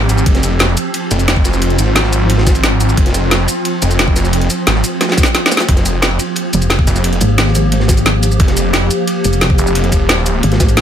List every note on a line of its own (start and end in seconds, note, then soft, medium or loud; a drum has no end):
0.00 10.81 F3 medium
0.00 5.65 C4 medium
0.00 0.24 G4 medium
0.00 ride soft
0.09 0.25 G#1 loud
0.09 closed hi-hat medium
0.09 ride medium
0.09 shaker medium
0.18 shaker soft
0.26 0.76 F1 loud
0.26 5.66 F4 medium
0.26 kick loud
0.26 closed hi-hat medium
0.26 ride loud
0.35 snare medium
0.35 closed hi-hat soft
0.43 closed hi-hat medium
0.43 ride medium
0.43 shaker medium
0.59 snare loud
0.59 closed hi-hat medium
0.59 ride loud
0.69 ride soft
0.77 closed hi-hat medium
0.77 ride medium
0.77 shaker medium
0.94 closed hi-hat medium
0.94 ride medium
1.11 1.44 F1 medium
1.11 closed hi-hat medium
1.11 ride medium
1.11 shaker medium
1.19 closed hi-hat soft
1.19 ride soft
1.19 shaker soft
1.28 snare loud
1.28 closed hi-hat medium
1.28 ride medium
1.36 kick loud
1.44 1.77 F1 loud
1.44 snare medium
1.44 closed hi-hat medium
1.44 ride medium
1.44 shaker medium
1.53 snare soft
1.53 shaker soft
1.62 closed hi-hat medium
1.62 ride medium
1.70 closed hi-hat soft
1.79 2.96 G#1 loud
1.79 closed hi-hat medium
1.79 ride medium
1.79 shaker medium
1.95 snare loud
1.95 closed hi-hat medium
1.95 ride medium
2.04 snare medium
2.12 closed hi-hat medium
2.12 ride medium
2.12 shaker medium
2.30 closed hi-hat medium
2.30 ride loud
2.38 snare medium
2.47 kick loud
2.47 snare loud
2.47 closed hi-hat medium
2.47 ride medium
2.47 shaker medium
2.55 closed hi-hat soft
2.55 ride soft
2.55 shaker soft
2.63 snare loud
2.63 closed hi-hat medium
2.80 closed hi-hat medium
2.80 ride medium
2.80 shaker medium
2.89 shaker soft
2.97 3.47 F1 loud
2.97 kick loud
2.97 closed hi-hat medium
2.97 ride loud
3.06 snare medium
3.06 closed hi-hat soft
3.14 closed hi-hat medium
3.14 ride medium
3.14 shaker medium
3.31 snare loud
3.31 closed hi-hat medium
3.31 ride medium
3.39 ride soft
3.48 closed hi-hat medium
3.48 ride medium
3.48 shaker medium
3.65 closed hi-hat medium
3.65 ride medium
3.82 4.15 F1 medium
3.82 closed hi-hat medium
3.82 ride medium
3.82 shaker medium
3.90 closed hi-hat soft
3.90 ride soft
3.90 shaker soft
3.99 snare loud
3.99 closed hi-hat medium
3.99 ride medium
4.08 kick loud
4.16 4.49 F1 loud
4.16 snare medium
4.16 closed hi-hat medium
4.16 ride medium
4.16 shaker medium
4.24 snare soft
4.24 shaker soft
4.33 closed hi-hat loud
4.33 ride medium
4.41 closed hi-hat soft
4.50 closed hi-hat medium
4.50 ride medium
4.50 shaker medium
4.67 4.83 G#1 loud
4.67 snare loud
4.67 closed hi-hat medium
4.67 ride medium
4.75 snare medium
4.84 closed hi-hat medium
4.84 ride medium
4.84 shaker medium
5.01 snare medium
5.01 snare loud
5.01 closed hi-hat loud
5.01 ride medium
5.09 snare loud
5.09 ride medium
5.12 snare medium
5.17 kick loud
5.17 snare medium
5.17 closed hi-hat medium
5.17 ride medium
5.17 shaker medium
5.23 snare medium
5.23 closed hi-hat soft
5.23 shaker soft
5.35 snare medium
5.35 closed hi-hat loud
5.35 ride medium
5.46 snare loud
5.51 snare loud
5.51 closed hi-hat medium
5.51 ride medium
5.51 shaker medium
5.57 snare loud
5.57 closed hi-hat soft
5.57 ride medium
5.57 shaker soft
5.60 snare loud
5.69 6.18 F1 loud
5.69 10.81 A#3 medium
5.69 10.81 G4 medium
5.69 kick loud
5.69 closed hi-hat loud
5.69 ride medium
5.76 snare medium
5.76 closed hi-hat soft
5.86 closed hi-hat medium
5.86 ride medium
5.86 shaker medium
6.02 snare loud
6.02 closed hi-hat loud
6.02 ride medium
6.11 ride soft
6.19 closed hi-hat medium
6.19 ride medium
6.19 shaker medium
6.36 closed hi-hat loud
6.36 ride medium
6.53 6.86 F1 loud
6.53 closed hi-hat medium
6.53 ride medium
6.53 shaker medium
6.61 closed hi-hat soft
6.61 ride soft
6.61 shaker soft
6.70 snare loud
6.70 closed hi-hat loud
6.70 ride loud
6.79 kick loud
6.87 7.20 F1 loud
6.87 snare medium
6.87 closed hi-hat medium
6.87 ride medium
6.87 shaker medium
6.95 snare soft
6.95 shaker soft
7.04 closed hi-hat loud
7.04 ride medium
7.13 closed hi-hat soft
7.20 8.38 G#1 loud
7.20 closed hi-hat medium
7.20 ride medium
7.20 shaker medium
7.38 snare loud
7.38 closed hi-hat loud
7.38 ride loud
7.47 snare medium
7.55 closed hi-hat medium
7.55 ride medium
7.55 shaker medium
7.72 closed hi-hat loud
7.72 ride medium
7.80 snare medium
7.88 kick loud
7.88 snare loud
7.88 closed hi-hat medium
7.88 ride medium
7.88 shaker medium
7.97 closed hi-hat soft
7.97 ride soft
7.97 shaker soft
8.06 snare loud
8.06 closed hi-hat loud
8.06 ride medium
8.23 closed hi-hat medium
8.23 ride medium
8.23 shaker medium
8.31 shaker soft
8.40 8.89 F1 loud
8.40 kick loud
8.40 closed hi-hat loud
8.40 ride medium
8.48 snare medium
8.48 closed hi-hat soft
8.57 closed hi-hat medium
8.57 ride medium
8.57 shaker medium
8.73 snare loud
8.73 closed hi-hat loud
8.73 ride medium
8.82 ride soft
8.91 closed hi-hat medium
8.91 ride medium
8.91 shaker medium
9.07 closed hi-hat loud
9.07 ride medium
9.24 9.57 F1 medium
9.24 closed hi-hat medium
9.24 ride medium
9.24 shaker medium
9.33 closed hi-hat soft
9.33 ride soft
9.33 shaker soft
9.41 snare loud
9.41 closed hi-hat loud
9.41 ride medium
9.50 kick loud
9.58 9.91 F1 loud
9.58 closed hi-hat medium
9.58 shaker medium
9.67 shaker soft
9.75 closed hi-hat loud
9.75 ride medium
9.84 closed hi-hat soft
9.92 10.42 D#1 loud
9.92 kick medium
9.92 closed hi-hat medium
9.92 ride medium
9.92 shaker medium
10.09 snare loud
10.09 closed hi-hat loud
10.09 ride loud
10.17 snare medium
10.26 closed hi-hat medium
10.26 ride medium
10.26 shaker medium
10.43 10.81 G#1 loud
10.43 closed hi-hat medium
10.43 ride medium
10.52 snare medium
10.52 closed hi-hat soft
10.60 kick loud
10.60 snare loud
10.60 closed hi-hat medium
10.60 ride medium
10.60 shaker medium
10.69 closed hi-hat soft
10.69 shaker soft
10.77 snare loud
10.77 closed hi-hat medium
10.77 ride medium